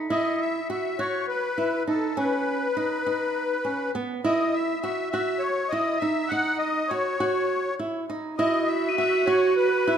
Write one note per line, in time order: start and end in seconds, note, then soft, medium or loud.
0.10 0.59 E4 medium
0.10 0.41 D#5 medium
0.40 0.68 E5 medium
0.70 0.94 F#4 medium
0.70 1.00 E5 medium
0.99 1.48 F#4 medium
0.99 1.26 C#5 medium
1.28 1.83 B4 medium
1.58 1.82 E4 medium
1.87 2.12 D#4 medium
1.87 2.18 A4 medium
2.17 2.66 C#4 medium
2.17 3.91 B4 medium
2.77 3.01 D#4 medium
3.06 3.55 D#4 medium
3.65 3.89 C#4 medium
3.95 4.20 B3 medium
4.24 4.74 E4 medium
4.24 4.55 D#5 medium
4.53 4.79 E5 medium
4.81 5.08 F#4 medium
4.81 5.09 E5 medium
5.10 5.63 F#4 medium
5.10 5.43 E5 medium
5.39 5.72 C#5 medium
5.69 5.97 E4 medium
5.69 5.98 D#5 medium
5.98 6.31 E5 medium
6.02 6.27 D#4 medium
6.29 6.81 D#4 medium
6.29 6.58 F#5 medium
6.58 6.91 D#5 medium
6.88 7.16 F#4 medium
6.88 7.75 C#5 medium
7.20 7.69 F#4 medium
7.79 8.04 E4 medium
8.10 8.34 D#4 medium
8.37 8.88 E4 medium
8.37 9.98 F#4 medium
8.37 8.69 D#5 medium
8.66 8.96 E5 medium
8.89 9.60 D#7 medium
8.97 9.23 F#4 medium
8.97 9.28 E5 medium
9.26 9.76 F#4 medium
9.26 9.54 C#5 medium
9.56 9.98 B4 medium
9.87 9.98 E4 medium